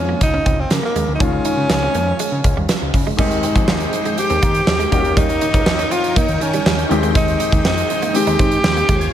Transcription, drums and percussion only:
0.21 kick, closed hi-hat
0.46 kick, closed hi-hat
0.70 snare, closed hi-hat
0.96 closed hi-hat
1.20 kick, closed hi-hat
1.45 closed hi-hat
1.70 snare, closed hi-hat
1.94 closed hi-hat
2.19 closed hi-hat
2.44 kick, closed hi-hat
2.69 snare, closed hi-hat
2.94 kick, open hi-hat
3.18 kick, crash
3.31 closed hi-hat
3.43 closed hi-hat
3.56 kick, closed hi-hat
3.68 snare
3.80 closed hi-hat
3.93 closed hi-hat
4.05 closed hi-hat
4.18 closed hi-hat
4.30 closed hi-hat
4.42 kick, closed hi-hat
4.55 closed hi-hat
4.67 snare
4.80 closed hi-hat
4.92 kick, closed hi-hat
5.05 closed hi-hat
5.17 kick, closed hi-hat
5.29 closed hi-hat
5.41 closed hi-hat
5.54 kick, closed hi-hat
5.66 snare
5.79 closed hi-hat
5.91 closed hi-hat
6.04 closed hi-hat
6.16 kick, closed hi-hat
6.28 closed hi-hat
6.41 closed hi-hat
6.53 closed hi-hat
6.66 snare
6.79 closed hi-hat
6.91 closed hi-hat
7.03 closed hi-hat
7.15 kick, closed hi-hat
7.28 closed hi-hat
7.40 closed hi-hat
7.52 kick, closed hi-hat
7.65 snare
7.77 closed hi-hat
7.90 closed hi-hat
8.02 closed hi-hat
8.15 closed hi-hat
8.27 closed hi-hat
8.39 kick, closed hi-hat
8.51 closed hi-hat
8.64 snare
8.77 closed hi-hat
8.89 kick, closed hi-hat
9.01 closed hi-hat

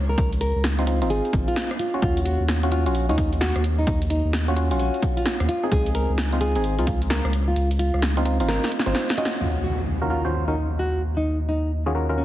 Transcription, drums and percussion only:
0.18 kick, closed hi-hat
0.33 closed hi-hat
0.41 closed hi-hat
0.64 snare
0.79 closed hi-hat
0.87 closed hi-hat
1.02 closed hi-hat
1.10 closed hi-hat
1.25 closed hi-hat
1.33 kick, closed hi-hat
1.48 closed hi-hat
1.56 snare
1.71 cross-stick, closed hi-hat
1.79 closed hi-hat
2.02 kick, closed hi-hat
2.17 closed hi-hat
2.26 closed hi-hat
2.49 snare
2.63 closed hi-hat
2.72 closed hi-hat
2.86 closed hi-hat
2.95 closed hi-hat
3.09 closed hi-hat
3.18 kick, closed hi-hat
3.33 closed hi-hat
3.41 snare
3.56 cross-stick, closed hi-hat
3.64 closed hi-hat
3.87 kick, closed hi-hat
4.02 closed hi-hat
4.10 closed hi-hat
4.33 snare
4.48 closed hi-hat
4.56 closed hi-hat
4.71 closed hi-hat
4.79 closed hi-hat
4.94 closed hi-hat
5.02 kick, closed hi-hat
5.17 closed hi-hat
5.26 snare
5.40 cross-stick, closed hi-hat
5.49 closed hi-hat
5.72 kick, closed hi-hat
5.86 closed hi-hat
5.95 closed hi-hat
6.18 snare
6.32 closed hi-hat
6.41 closed hi-hat
6.55 closed hi-hat
6.64 closed hi-hat
6.79 closed hi-hat
6.87 kick, closed hi-hat
7.02 closed hi-hat
7.10 snare
7.25 cross-stick, closed hi-hat
7.33 closed hi-hat
7.56 closed hi-hat
7.71 closed hi-hat
7.79 closed hi-hat
7.94 cross-stick
8.02 snare
8.17 closed hi-hat
8.25 closed hi-hat
8.40 closed hi-hat
8.49 snare, closed hi-hat
8.63 snare, closed hi-hat
8.72 closed hi-hat
8.79 snare
8.86 closed hi-hat
8.95 snare
9.09 snare, closed hi-hat
9.18 closed hi-hat
9.25 snare

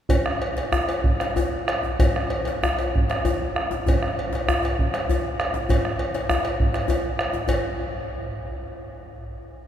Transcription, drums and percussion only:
0.09 bombo low, cowbell, djembe bass
0.26 bombo rim
0.41 bombo rim, cowbell, djembe slap
0.57 bombo rim, cowbell, djembe slap
0.72 bombo rim, djembe bass
0.89 cowbell, djembe tone
1.04 bombo low
1.20 bombo rim, cowbell, djembe slap
1.36 cowbell, djembe bass
1.52 djembe slap
1.68 bombo rim, cowbell
1.83 djembe tone
1.99 bombo low, cowbell, djembe bass
2.16 bombo rim
2.30 bombo rim, cowbell, djembe slap
2.45 bombo rim, cowbell, djembe slap
2.63 bombo rim, djembe bass
2.79 cowbell, djembe tone
2.96 bombo low
3.09 bombo rim, cowbell, djembe slap
3.25 cowbell, djembe bass
3.40 djembe slap
3.56 bombo rim
3.71 djembe slap, djembe tone
3.86 bombo low, cowbell, djembe bass
4.03 bombo rim
4.17 bombo rim, cowbell, djembe slap
4.33 bombo rim, cowbell, djembe slap
4.48 bombo rim, djembe bass
4.62 cowbell, djembe tone
4.79 bombo low
4.94 bombo rim, cowbell, djembe slap
5.09 cowbell, djembe bass
5.23 djembe slap
5.40 bombo rim, cowbell
5.54 djembe slap, djembe tone
5.69 bombo rim, bombo low, cowbell, djembe bass
5.85 bombo rim, djembe slap
5.99 cowbell
6.14 bombo rim, cowbell, djembe slap
6.29 bombo rim, djembe bass
6.44 bombo rim, cowbell, djembe tone
6.60 bombo low
6.74 bombo rim, cowbell, djembe slap
6.88 bombo rim, cowbell, djembe bass
7.04 djembe slap
7.18 bombo rim, cowbell, djembe slap
7.33 bombo rim, djembe slap, djembe tone
7.48 bombo low, cowbell, djembe bass

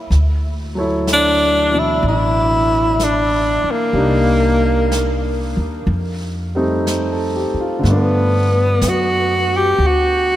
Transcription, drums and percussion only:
0.11 brush sweep, snare
1.07 brush sweep, snare, hi-hat pedal
2.04 brush sweep
2.99 brush sweep, snare, hi-hat pedal
3.96 brush sweep
4.92 brush sweep, snare, hi-hat pedal
5.89 brush sweep
6.87 brush sweep, snare, hi-hat pedal
7.85 brush sweep, snare
8.81 brush sweep, snare, hi-hat pedal
9.79 brush sweep

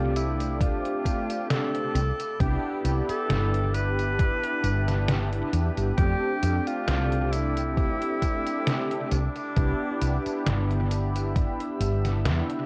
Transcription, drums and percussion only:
0.16 closed hi-hat, tambourine
0.40 closed hi-hat, tambourine
0.61 kick, closed hi-hat, tambourine
0.86 closed hi-hat
1.06 kick, closed hi-hat, tambourine
1.30 closed hi-hat, tambourine
1.51 snare, closed hi-hat, tambourine
1.75 closed hi-hat
1.95 closed hi-hat, tambourine
2.20 closed hi-hat, tambourine
2.40 kick, closed hi-hat, tambourine
2.85 closed hi-hat, tambourine
3.09 closed hi-hat, tambourine
3.30 snare, closed hi-hat, tambourine
3.54 closed hi-hat
3.74 closed hi-hat, tambourine
3.99 closed hi-hat, tambourine
4.19 kick, closed hi-hat, tambourine
4.43 closed hi-hat
4.64 closed hi-hat, tambourine
4.88 snare, closed hi-hat, tambourine
5.08 snare, closed hi-hat, tambourine
5.33 closed hi-hat
5.53 closed hi-hat, tambourine
5.78 closed hi-hat, tambourine
5.98 kick, closed hi-hat, tambourine
6.43 closed hi-hat, tambourine
6.67 closed hi-hat, tambourine
6.88 snare, closed hi-hat, tambourine
7.12 closed hi-hat
7.33 closed hi-hat, tambourine
7.57 closed hi-hat, tambourine
7.77 kick, closed hi-hat, tambourine
8.02 closed hi-hat
8.22 kick, closed hi-hat, tambourine
8.46 closed hi-hat, tambourine
8.67 snare, closed hi-hat, tambourine
8.91 closed hi-hat
9.11 closed hi-hat, tambourine
9.36 closed hi-hat, tambourine
9.56 kick, closed hi-hat, tambourine
10.01 closed hi-hat, tambourine
10.26 closed hi-hat, tambourine
10.46 snare, closed hi-hat, tambourine
10.70 closed hi-hat
10.91 closed hi-hat, tambourine
11.15 closed hi-hat, tambourine
11.36 kick, closed hi-hat, tambourine
11.60 closed hi-hat
11.81 closed hi-hat, tambourine
12.05 snare, closed hi-hat, tambourine
12.26 snare, closed hi-hat, tambourine
12.50 closed hi-hat

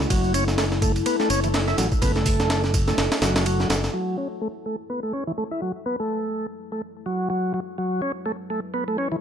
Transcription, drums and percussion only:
0.00 snare
0.10 kick, ride, tambourine
0.24 tambourine
0.34 ride, tambourine
0.48 snare, tambourine
0.58 snare, ride, tambourine
0.72 snare, tambourine
0.82 kick, ride, tambourine
0.96 ride, tambourine
1.06 ride, tambourine
1.20 snare, tambourine
1.30 ride, tambourine
1.44 ride, tambourine
1.54 snare, ride, tambourine
1.68 snare, tambourine
1.78 snare, ride, tambourine
1.92 kick, tambourine
2.02 kick, ride, tambourine
2.16 snare, tambourine
2.26 kick, open hi-hat, tambourine
2.40 snare, tambourine
2.50 snare, ride, tambourine
2.64 snare, tambourine
2.74 kick, ride, tambourine
2.87 snare, tambourine
2.98 snare, ride, tambourine
3.11 snare, ride, tambourine
3.22 snare, ride, tambourine
3.36 snare, ride, tambourine
3.46 ride, tambourine
3.60 snare, tambourine
3.70 snare, ride, tambourine
3.84 snare, tambourine

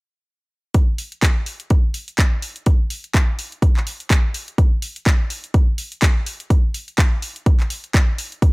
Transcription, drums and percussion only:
0.74 kick, closed hi-hat
0.98 open hi-hat
1.12 closed hi-hat
1.22 kick, clap, closed hi-hat
1.46 open hi-hat
1.60 closed hi-hat
1.70 kick, closed hi-hat
1.94 open hi-hat
2.08 closed hi-hat
2.18 kick, clap, closed hi-hat
2.42 open hi-hat
2.56 closed hi-hat
2.66 kick, closed hi-hat
2.90 open hi-hat
3.04 closed hi-hat
3.14 kick, clap, closed hi-hat
3.39 open hi-hat
3.52 closed hi-hat
3.62 kick, closed hi-hat
3.77 clap
3.87 open hi-hat
4.00 closed hi-hat
4.10 kick, clap, closed hi-hat
4.34 open hi-hat
4.48 closed hi-hat
4.58 kick, closed hi-hat
4.82 open hi-hat
4.96 closed hi-hat
5.06 kick, clap, closed hi-hat
5.30 open hi-hat
5.44 closed hi-hat
5.54 kick, closed hi-hat
5.78 open hi-hat
5.92 closed hi-hat
6.02 kick, clap, closed hi-hat
6.26 open hi-hat
6.40 closed hi-hat
6.50 kick, closed hi-hat
6.74 open hi-hat
6.88 closed hi-hat
6.98 kick, clap, closed hi-hat
7.22 open hi-hat
7.36 closed hi-hat
7.46 kick, closed hi-hat
7.60 clap, closed hi-hat
7.70 open hi-hat
7.84 closed hi-hat
7.94 kick, clap, closed hi-hat
8.18 open hi-hat
8.32 closed hi-hat
8.42 kick, closed hi-hat

